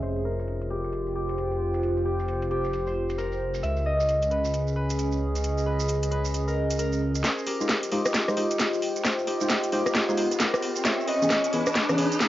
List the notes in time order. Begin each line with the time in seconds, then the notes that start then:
Already playing: G#4 D#5 E5
0.02 F1 F4 C5, closed hi-hat, maracas
0.16 maracas
0.25 A#4
0.39 maracas
0.44 C5 G5
0.48 closed hi-hat, maracas
0.61 closed hi-hat, maracas
0.70 G4, closed hi-hat
0.84 maracas
0.93 closed hi-hat, maracas
1.06 maracas
1.16 G4
1.29 closed hi-hat, maracas
1.38 closed hi-hat, maracas
1.51 maracas
1.74 closed hi-hat, maracas
1.83 closed hi-hat, maracas
1.97 maracas
2.05 G4
2.19 maracas
2.28 closed hi-hat, maracas
2.42 closed hi-hat, maracas
2.51 G4, closed hi-hat
2.64 maracas
2.73 closed hi-hat, maracas
2.87 C5, maracas
3.09 closed hi-hat, maracas
3.18 A#4, closed hi-hat, maracas
3.32 maracas
3.54 closed hi-hat, maracas
3.63 C#2 C#4 E5, closed hi-hat, maracas
3.77 maracas
3.86 G#4 D#5
4.00 maracas
4.09 D#5, closed hi-hat, maracas
4.22 closed hi-hat, maracas
4.31 B4, closed hi-hat
4.45 maracas
4.54 closed hi-hat, maracas
4.67 maracas
4.76 B4
4.90 closed hi-hat, maracas
4.99 closed hi-hat, maracas
5.12 maracas
5.35 closed hi-hat, maracas
5.44 closed hi-hat, maracas
5.58 maracas
5.66 B4
5.80 maracas
5.88 closed hi-hat, maracas
6.03 closed hi-hat, maracas
6.11 B4, closed hi-hat
6.25 maracas
6.34 closed hi-hat, maracas
6.48 A#4, maracas
6.71 closed hi-hat, maracas
6.79 A#4, closed hi-hat, maracas
6.93 maracas
7.15 closed hi-hat, maracas
7.24 F4 G#4 C5, snare, closed hi-hat, riser, maracas
7.38 maracas
7.47 G4 A#4, open hi-hat
7.61 G#3 D#4 F4 C5, maracas
7.69 snare, closed hi-hat, maracas
7.74 C5
7.83 closed hi-hat, maracas
7.92 G#3 D#4 F4 G4 C5, open hi-hat
8.05 cross-stick, maracas
8.14 snare, closed hi-hat, maracas
8.19 G5
8.28 G#3 D#4 F4 C5, cross-stick, maracas
8.37 G#3 D#4 F4 G4 C5, open hi-hat
8.51 closed hi-hat, maracas
8.59 snare, closed hi-hat, maracas
8.73 maracas
8.82 open hi-hat
8.96 closed hi-hat, maracas
9.05 snare, closed hi-hat, maracas
9.18 maracas
9.27 D#4 G4, open hi-hat
9.41 G#3 D#4 F4 C5, maracas
9.50 snare, closed hi-hat, maracas
9.63 closed hi-hat, maracas
9.72 G#3 D#4 F4 G4 C5, open hi-hat
9.86 cross-stick, maracas
9.95 snare, closed hi-hat, maracas
10.08 G#3 D#4 F4 G#4 C5, maracas
10.17 G#3 D#4 F4 C5, open hi-hat
10.31 closed hi-hat, maracas
10.40 G4 A#4, snare, closed hi-hat, maracas
10.54 cross-stick, maracas
10.63 open hi-hat
10.76 closed hi-hat, maracas
10.85 C#4 C#5 E5, snare, closed hi-hat, maracas
11.00 D#5, maracas
11.07 B4 D#5, open hi-hat
11.22 E3 B3 C#4 G#4, maracas
11.30 snare, closed hi-hat, maracas
11.39 G#4
11.44 closed hi-hat, maracas
11.52 E3 B3 C#4 G#4 B4, open hi-hat
11.66 cross-stick, maracas
11.75 snare, closed hi-hat, maracas
11.89 E3 B3 C#4 G#4, cross-stick, maracas
11.98 E3 B3 C#4 G#4 B4, open hi-hat
12.12 closed hi-hat, maracas
12.20 snare, closed hi-hat, maracas